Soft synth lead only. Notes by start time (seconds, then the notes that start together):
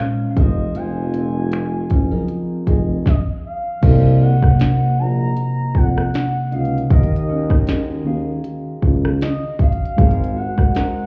Already playing: F5
0.31 F5
0.38 D#5
0.76 G#5
3.07 D#5
3.46 F5
4.22 F#5
4.99 A#5
5.76 F#5
6.53 F5
6.91 D#5
9.22 D#5
9.60 F5
10.37 F#5